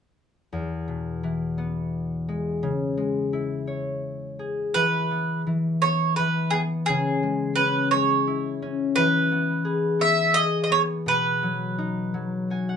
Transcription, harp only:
0.53 E2
0.88 B2
1.23 E3
1.58 B3
2.28 G#3
2.63 C#3
2.97 G#3
3.33 E4
3.67 C#5
4.39 G#4
4.75 E3
5.11 B3
5.47 E3
5.83 B3
6.19 E3
6.53 B3
6.89 C#3
7.23 G#3
7.57 C#4
7.93 G#3
8.27 E4
8.62 C#4
8.97 E3
9.32 B3
9.65 G#4
9.99 B3
10.36 G#4
10.70 B3
11.06 B2
11.43 F#3
11.79 D#4
12.14 F#3
12.50 F#4 G#5
12.69 F#5

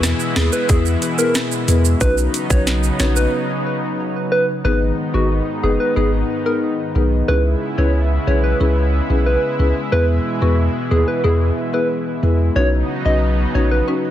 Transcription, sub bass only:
Already playing: E2
0.36 D#2
0.69 E2
1.68 E2
2.01 B1
2.50 B1
3.00 A#1
4.65 G#1
5.14 G#1
5.64 F#1
5.97 G#1
6.96 B1
7.29 C#2
7.78 C#2
8.27 B1
8.60 C#2
9.10 B1
9.59 C#2
9.92 E2
10.42 E2
10.91 D#2
11.24 E2
12.23 E2
12.56 B1
13.06 B1
13.55 A#1

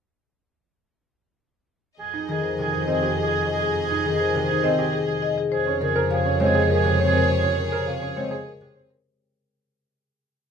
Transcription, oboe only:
1.99 G#4
2.30 G#4
2.61 G#4
2.92 G#4
3.22 G#4
3.53 G#4
3.84 G#4
4.14 G#4
4.45 G#4
4.76 G#4
5.07 G#4
5.52 G#4
5.83 G#4
6.13 G#4
6.44 G#4
6.75 G#4
7.06 G#4
7.37 G#4
7.68 G#4
7.98 G#4
8.29 G#4
8.60 G#4

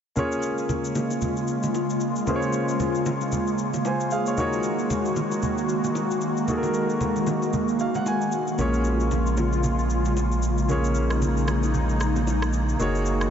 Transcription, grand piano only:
0.16 A#3 C#4 F4 G#4 C#5
2.26 A#3 C#4 F4 G#4 C5
2.36 C#5
3.86 C5 G#5
4.12 G#4 F5
4.27 F4 C#5
4.37 A#3 D#4 F#4 G#4 C#5
6.47 A#3 D#4 F#4 G#4 A4
6.57 A#4
7.81 F5
7.96 F#5
8.07 G#5
8.58 A#3 C#4 F4 G#4 C#5
10.68 A#3 C#4 F4 G#4 C#5
12.79 A#3 D#4 F#4 G#4 C#5

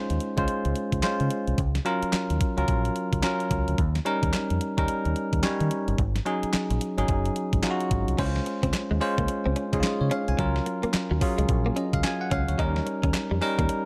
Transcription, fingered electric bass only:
0.10 D#2
0.38 C#2
0.65 C#2
0.93 C#2
1.20 C#3
1.48 C2
1.58 C#2
2.03 muted fingered electric bass stroke
2.13 muted fingered electric bass stroke
2.30 D#2
2.58 C#2
2.68 A#1
3.13 C#2
3.51 C#2
3.68 D2
3.78 D#2
4.23 D#2
4.51 F2
4.78 D#2
5.06 D#2
5.33 D#2
5.61 D#3
5.88 G1
5.99 G#1
6.43 muted fingered electric bass stroke
6.54 muted fingered electric bass stroke
6.71 A#1
6.98 G#1
7.09 F#1
7.53 G#1
7.91 G#1
8.08 C2
8.19 C#2
8.63 C#2
8.91 D#2
9.18 C#2
9.46 C#2
9.73 C#2
10.01 C#3
10.28 C2
10.39 C#2
10.84 muted fingered electric bass stroke
10.94 muted fingered electric bass stroke
11.11 D#2
11.39 C#2
11.49 A#1
11.94 C#2
12.32 C#2
12.49 D2
12.59 D#2
13.04 D#2
13.31 F2
13.59 D#2

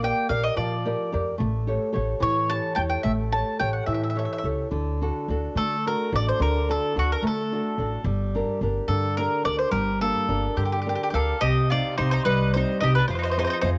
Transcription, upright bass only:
Already playing: A#1
0.30 A#1
0.57 A#2
1.14 F2
1.40 A1
1.95 A1
2.22 A2
2.78 E2
3.05 A1
3.61 A1
3.88 A2
4.44 C#2
4.72 D2
5.28 D2
5.55 D3
6.12 A1
6.40 D2
6.96 D2
7.22 D3
7.78 A1
8.04 G1
8.61 G1
8.88 G2
9.46 D2
9.72 G1
10.29 G1
10.57 G2
11.14 D2
11.41 C2
11.99 C2
12.26 C2
12.82 C2
13.09 F2
13.63 F2

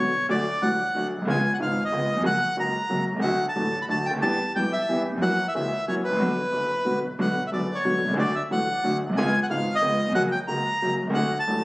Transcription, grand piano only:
0.29 D2 D3 F#3 A3 F#4
0.62 A1 A2 D3 F#3 A3 F#4
0.95 D2 D3 F#3 A3 F#4
1.17 A#1
1.22 B1 C2
1.27 C#2 C#3 G#3 B3 F4
1.59 G#1 G#2 C#3 G#3 B3 F4
1.92 C#2 C#3 G#3 B3 F4
2.12 D#2
2.16 E2
2.21 F2 F#2 C#3 F#3 A#3 F#4
2.57 C#2 C#3 F#3 A#3 F#4
2.90 F#2 C#3 F#3 A#3 F#4
3.12 B1
3.16 C2 C#2
3.24 D2 D3 F#3 A3 F#4
3.56 A1 A2 D3 F#3 A3 F#4
3.88 D2 D3 F#3 A3 F#4
4.11 C#2 D2
4.18 D#2
4.22 E2 E3 G3 B3 G4
4.56 B1 B2 E3 G3 B3 G4
4.89 E2 E3 G3 B3 G4
5.09 D#2
5.15 E2 F2
5.22 F#2 E3 F#3 A#3 C#4 F#4
5.55 C#2 C#3 E3 A#3 C#4 F#4
5.88 F#2 E3 F#3 A#3 C#4 F#4
6.08 G#1
6.12 A1 A#1
6.20 B1 B2 D3 F#3 B3 F#4
6.52 F#1 F#2 D3 F#3 B3 F#4
6.85 B1 B2 D3 F#3 B3 F#4
7.19 B1 B2 D3 F#3 B3 F#4
7.52 F#1 F#2 D3 F#3 B3 F#4
7.84 B1 B2 D3 F#3 B3 F#4
8.05 B1 C2
8.14 C#2 D2 D3 F#3 A3 F#4
8.50 A1 A2 D3 F#3 A3 F#4
8.84 D2 D3 F#3 A3 F#4
9.06 A#1 B1
9.13 C2
9.18 C#2 C#3 G#3 B3 F4
9.50 G#1 G#2 C#3 G#3 B3 F4
9.82 C#2 C#3 G#3 B3 F4
10.04 D#2
10.08 E2 F2
10.15 F#2 C#3 F#3 A#3 F#4
10.48 C#2 C#3 F#3 A#3 F#4
10.82 F#2 C#3 F#3 A#3 F#4
11.03 B1
11.07 C2 C#2
11.13 D2 D3 F#3 A3 F#4
11.48 A1 A2 D3 F#3 A3 F#4

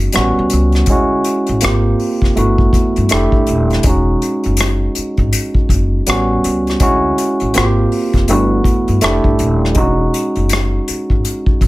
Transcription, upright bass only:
0.16 A1
0.39 C#2
0.53 C#2
0.88 D2
1.49 A1
1.63 G#1
2.23 F1
2.37 G1
2.73 E2
2.97 G2
3.12 F1
3.33 G1
3.49 D#1
3.85 E1
4.46 F#1
4.97 muted upright bass stroke
5.19 G#1
5.70 F#1
6.08 A1
6.45 C#2
6.81 D2
7.41 A1
7.56 G#1
8.15 F1
8.30 G1
8.65 E2
8.88 G2
9.03 F1
9.25 G1
9.40 D#1
9.77 E1
10.36 F#1
10.89 muted upright bass stroke
11.11 G#1
11.62 F#1

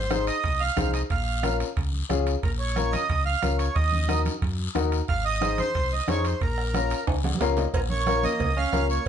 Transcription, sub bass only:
Already playing: G#1
0.44 C2
0.77 C2
1.10 A#1
1.77 C#2
2.10 C#2
2.43 A#1
3.10 C#2
3.43 C#2
3.76 D#2
4.42 F#2
4.75 D#2
5.09 G#1
5.75 C2
6.08 F2
6.41 A#1
7.07 C#2
7.40 C#2
7.74 A#1
8.40 C#2
8.72 C#2

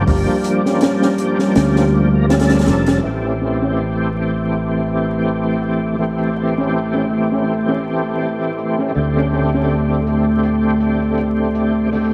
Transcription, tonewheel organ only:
0.06 F3 A#3 D4 G4
1.18 F3 A#3 D4 G4
2.13 F3 A#3 D4 A#4
2.29 F3 A#3 D4 A4
3.03 E3 A3 C4 G4
4.13 E3 A3 C4 G4
5.98 E3 A3 C4 G4
7.10 E3 A3 C4 G4
8.95 D3 A3 C4 G4
10.06 D3 A3 C4 G4
11.92 D3 A3 C4 G4

